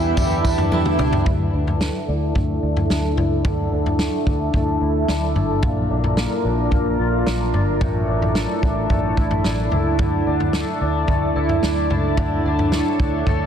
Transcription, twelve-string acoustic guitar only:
Already playing: E2 G3 D4 E4
0.17 G3
0.45 D4
0.72 E4
0.99 D4
1.26 D3
1.54 D4
1.81 A3
2.08 D4
2.36 A3
2.63 E4
2.90 D4
3.17 E4
3.45 D3
3.72 D4
3.99 A3
4.27 D4
4.54 A3
4.82 E4
5.09 D4
5.36 E4
5.63 A#2
5.90 D4
6.18 A#3
6.44 D4
6.72 A#3
6.99 F4
7.26 D4
7.54 F4
7.81 A2
8.08 D4
8.35 A3
8.63 D4
8.90 A3
9.17 E4
9.45 D4
9.72 E4
9.99 D3
10.27 D4
10.54 A3
10.81 D4
11.09 A3
11.36 E4
11.63 D4
11.91 E4
12.18 D3
12.46 D4
12.73 A3
12.99 D4
13.27 A3

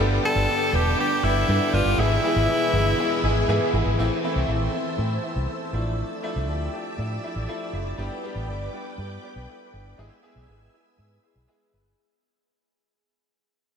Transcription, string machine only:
Already playing: B4 D5 G5 D6
1.98 E5 G#5 E6
3.99 C5 E5 A5 E6
5.73 D5 E5
7.97 B4 G5 D6
9.98 E5 G#5 E6

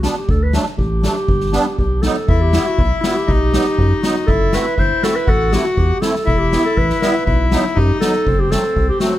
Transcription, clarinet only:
0.03 F#4
0.18 G4
0.31 A4
0.43 B4
0.78 G4
1.79 G4
2.02 A4
2.42 G4
2.67 F#4
2.80 E4
3.02 G4
4.02 F#4
4.27 A4
4.55 B4
4.80 C5
5.04 A4
5.16 B4
5.29 A4
5.53 G4
5.64 F#4
5.78 G4
6.02 A4
6.39 G4
6.66 A4
6.78 B4
7.01 B4
7.76 G4
8.01 A4
8.40 G4
8.51 A4
8.89 G4
9.01 F#4

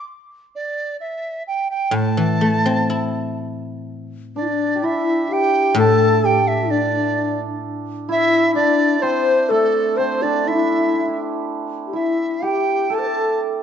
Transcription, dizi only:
0.55 D5
1.00 E5
1.47 G5
1.70 G5
1.95 A5
4.36 D5
4.84 E5
5.32 G5
5.78 A5
6.25 G5
6.47 E5
6.70 D5
8.11 E5
8.55 D5
9.02 C5
9.50 A4
9.97 C5
10.22 D5
10.47 E5
11.94 E5
12.45 G5
12.94 A5

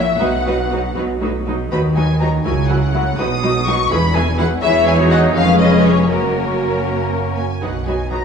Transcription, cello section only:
Already playing: A#2
0.21 B2
0.96 B2
1.21 A2
1.46 B2
1.72 D#3
2.46 C#3
3.19 B2
3.91 E2
4.62 E2
5.35 F2
6.09 F#2
7.62 B2

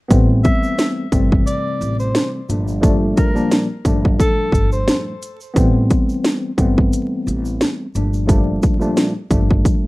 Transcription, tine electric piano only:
0.08 E3 G3 A3 B3 C4
1.12 C3 E3 G3 A3 C4
2.49 A#2 F3 G3 A3 D4
2.80 A#2 F3 G3 A3 D4
3.34 A#2 F3 G3 A#3 D4
3.85 A#2 F3 G3 A3 D4
5.54 E3 G3 A3 B3 C4
6.58 E3 G3 A3 B3 C4
7.95 A#2 F3 G3 A3 D4
8.26 A#2 F3 G3 A3 D4
8.79 A#2 F3 G3 A3 D4
9.30 A#2 F3 G3 A3 D4

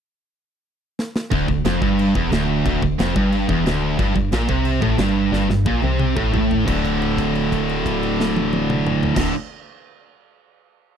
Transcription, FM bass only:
1.31 D1
1.48 D1
1.65 F1
1.82 G1
2.15 E1
2.31 D1
2.66 D1
2.82 D1
3.00 F1
3.16 G1
3.49 E1
3.66 D1
3.99 G1
4.16 G1
4.33 A#1
4.49 C2
4.82 A1
4.99 G1
5.32 G1
5.49 G1
5.66 A#1
5.83 C2
6.17 A1
6.33 A1
6.68 D1
9.17 D1

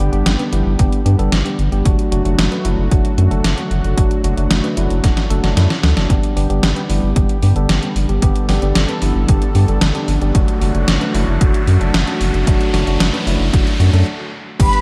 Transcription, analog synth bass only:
0.13 G1
0.26 G1
0.53 G1
0.66 G1
0.79 G1
1.06 G2
1.19 G1
1.32 G1
1.59 G1
1.72 G1
1.85 F#1
2.12 F#1
2.25 F#1
2.38 F#1
2.65 F#1
2.78 F#1
2.91 F#1
3.18 F#2
3.31 F#1
3.44 F#1
3.71 F#1
3.84 F#1
3.98 F#1
4.24 F#1
4.37 F#1
4.51 F#1
4.77 F#1
4.90 F#1
5.04 E1
5.30 F#1
5.44 F#1
5.57 F#2
5.83 D2
5.97 F#1
6.10 G1
6.36 G1
6.50 G1
6.63 G1
6.89 G1
7.03 G1
7.16 G1
7.43 G2
7.56 G1
7.69 G1
7.96 G1
8.09 G1
8.22 G1
8.49 G1
8.62 G1
8.76 G1
9.02 G1
9.15 G1
9.29 G1
9.55 G2
9.68 G1
9.82 G1
10.08 G1
10.22 G1
10.35 F#1
10.61 F#1
10.75 F#1
10.88 F#1
11.14 F#1
11.28 F#1
11.41 F#1
11.68 F#2
11.81 F#1
11.94 F#1
12.21 F#1
12.34 F#1
12.47 F#1
12.74 F#1
12.87 F#1
13.00 F#1
13.27 F#1
13.40 F#1
13.53 F#1
13.80 F#2
13.93 F#2
14.60 G1

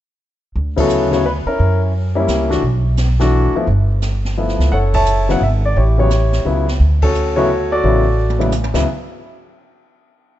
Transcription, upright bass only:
0.56 D2
1.46 muted upright bass stroke
1.59 F#2
2.28 C#2
2.62 B1
3.54 muted upright bass stroke
3.67 G1
4.59 C#2
4.72 F#1
5.40 G#1
5.76 A1
6.45 C#2
6.80 D2
7.83 A1
8.74 D2

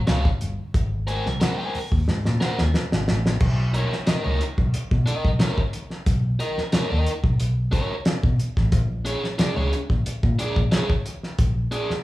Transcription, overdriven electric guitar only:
0.07 F#4 C#5 F5
1.07 A#4 C5 G#5
1.40 A#4 C5 F#5
1.58 A#4 C5 G#5
2.40 A#4 C5 F#5
3.74 D#4 A#4 C#5
4.07 D#4 A#4 D#5
4.24 D#4 A#4 C#5
5.06 D#4 A#4 D#5
5.39 D#4 A#4 C#5
6.39 D#4 A#4 D#5
6.72 D#4 A#4 C#5
6.90 D#4 A#4 D#5
7.71 D#4 A#4 C#5
9.05 D4 G#4 C#5
9.38 D4 G#4 D5
9.56 D4 G#4 C#5
10.39 D4 G#4 D5
10.72 D4 G#4 C#5
11.71 D4 G#4 D5

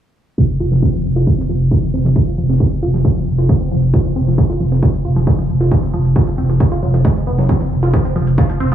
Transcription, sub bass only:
0.60 F1
0.72 F1
1.05 F1
1.16 F1
1.49 F1
1.61 F1
1.94 F1
2.05 F1
2.38 F1
2.49 F1
2.82 F1
2.94 F1
3.27 F1
3.38 F1
3.71 F1
3.83 F1
4.16 F1
4.27 F1
4.60 F1
4.72 F1
5.05 F1
5.16 F1
5.49 F1
5.61 F1
5.94 F1
6.05 F1
6.38 F1
6.50 F1
6.82 F1
6.94 F1
7.27 F1
7.38 F1
7.71 F1
7.83 F1
8.16 F1
8.27 F1
8.60 F1
8.72 F1

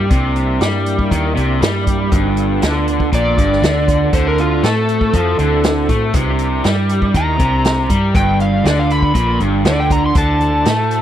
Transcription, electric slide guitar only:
3.15 D5
4.14 C5
4.27 A#4
4.40 F4
4.64 A4
7.17 A#5
8.16 G5
8.42 F5
8.66 D5
8.80 F5
8.91 B5
9.66 D5
9.80 G5
9.92 A#5
10.06 C6
10.18 A5

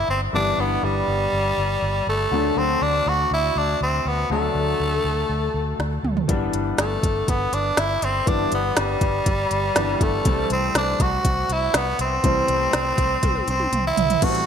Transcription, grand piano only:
Already playing: E3 G3 B3 D4
0.33 E3 G3 B3 D4
2.31 D3 F#3 A3 D4
4.30 D3 F#3 A3 D4
6.28 E3 G3 B3 D4
8.26 E3 G3 B3 D4
9.76 E3 G3 B3 D4
10.25 E3 G3 A3 C4
12.23 E3 G3 A3 C4
14.22 E3 G3 A3 B3
14.29 C4

